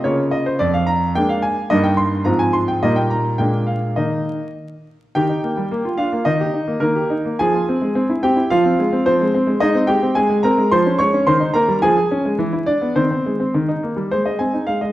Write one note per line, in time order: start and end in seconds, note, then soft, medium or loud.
0.04 0.58 C#3 medium
0.04 0.56 A#3 soft
0.04 0.56 F4 soft
0.04 0.21 C#5 medium
0.31 0.46 D#5 medium
0.46 0.60 C5 medium
0.59 1.14 F2 medium
0.59 0.73 D5 medium
0.74 0.87 F5 medium
0.87 1.12 A#5 medium
1.15 1.56 G#3 medium
1.15 1.56 A#3 soft
1.15 1.56 D4 medium
1.15 1.29 G5 loud
1.29 1.43 F5 medium
1.42 1.68 G#5 medium
1.70 2.25 G2 medium
1.70 2.22 G3 soft
1.70 2.23 A#3 medium
1.70 2.23 D#4 medium
1.70 1.84 D#5 loud
1.84 1.98 G5 medium
1.97 2.23 C6 medium
2.24 2.80 G#2 medium
2.24 2.78 F3 soft
2.24 2.78 C4 soft
2.24 2.78 F4 medium
2.24 2.39 A#5 medium
2.39 2.53 G#5 medium
2.53 2.67 C6 medium
2.68 2.82 G5 medium
2.83 3.37 A#2 medium
2.83 3.35 G3 medium
2.83 3.36 A#3 soft
2.83 3.36 D#4 soft
2.83 2.96 D#5 medium
2.96 3.10 G5 medium
3.10 3.39 A#5 medium
3.38 3.96 A#2 medium
3.38 3.93 G#3 soft
3.38 3.93 A#3 soft
3.38 3.94 D4 soft
3.38 3.67 G5 medium
3.67 3.97 F5 medium
3.96 4.39 D#3 soft
3.96 4.45 A#3 soft
3.96 4.45 D#4 soft
3.96 4.50 D#5 medium
5.15 5.29 D#3 medium
5.15 5.96 G4 medium
5.15 5.95 G5 medium
5.29 5.44 D#4 soft
5.44 5.58 A#3 medium
5.57 5.71 G3 medium
5.71 5.85 A#3 medium
5.85 5.97 F4 medium
5.98 6.13 D4 soft
5.98 6.25 F4 medium
5.98 6.26 F5 medium
6.12 6.27 A#3 soft
6.25 6.40 D#3 medium
6.25 6.52 D#4 medium
6.25 6.82 D#5 medium
6.40 6.55 G4 medium
6.54 6.69 D#4 soft
6.67 6.80 A#3 medium
6.80 6.95 D#3 medium
6.80 7.24 A#3 medium
6.80 7.35 A#4 medium
6.95 7.11 G4 soft
7.10 7.26 D#4 medium
7.25 7.40 A#3 soft
7.39 7.54 F3 medium
7.39 8.20 G#4 medium
7.39 8.19 G#5 loud
7.54 7.69 F4 medium
7.69 7.83 C4 medium
7.82 7.96 G#3 medium
7.95 8.09 C4 medium
8.09 8.24 E4 medium
8.23 8.38 C4 medium
8.23 8.49 G4 medium
8.23 8.48 G5 medium
8.36 8.51 E4 medium
8.50 8.65 F3 medium
8.50 9.03 F4 medium
8.50 9.02 F5 loud
8.65 8.79 C4 medium
8.79 8.93 G#3 medium
8.93 9.06 C4 medium
9.06 9.20 F3 medium
9.06 9.33 C4 medium
9.06 9.57 C5 medium
9.21 9.35 G#3 medium
9.35 9.49 C4 medium
9.47 9.60 G#3 medium
9.60 9.75 G#3 medium
9.60 9.87 D#4 medium
9.60 9.77 D#5 loud
9.75 9.89 C4 medium
9.87 10.03 G#3 medium
9.87 10.14 G4 medium
9.87 10.15 G5 medium
10.02 10.17 C4 medium
10.15 10.28 G#3 medium
10.15 10.42 G#4 medium
10.15 10.43 G#5 medium
10.29 10.44 G#3 medium
10.43 10.58 C4 medium
10.43 10.70 A#4 medium
10.43 10.71 A#5 medium
10.58 10.71 G#3 medium
10.71 10.85 F3 medium
10.71 10.97 C5 medium
10.71 10.99 C6 loud
10.86 11.00 C#4 medium
10.99 11.13 G#3 medium
10.99 11.25 C#5 medium
10.99 11.23 C#6 loud
11.14 11.27 C#4 medium
11.27 11.40 D#3 medium
11.27 11.52 C5 medium
11.27 11.54 C6 loud
11.40 11.54 D#4 medium
11.54 11.68 A#3 medium
11.54 11.80 A#4 medium
11.54 11.78 A#5 loud
11.68 11.82 G3 medium
11.82 11.95 F3 medium
11.82 11.95 G#4 medium
11.82 12.33 G#5 loud
11.97 12.11 G#4 medium
12.11 12.25 C#4 medium
12.25 12.39 G#3 medium
12.39 12.52 E3 medium
12.53 12.68 E4 medium
12.66 12.94 D4 medium
12.66 12.95 D5 medium
12.81 12.96 B3 medium
12.96 13.10 D#3 medium
12.96 13.09 C4 medium
12.96 13.54 C5 medium
13.11 13.26 C4 medium
13.26 13.40 G#3 medium
13.40 13.54 C4 medium
13.54 13.68 D#3 medium
13.68 13.83 D#4 medium
13.83 13.98 A#3 medium
13.96 14.11 G3 soft
14.11 14.24 G#3 medium
14.11 14.25 C5 medium
14.25 14.40 G#3 soft
14.25 14.39 D#5 medium
14.39 14.54 C4 soft
14.39 14.64 G#5 medium
14.53 14.68 D#4 soft
14.67 14.80 G#3 soft
14.67 14.81 F5 medium
14.81 14.92 G#3 soft
14.81 14.92 D#5 medium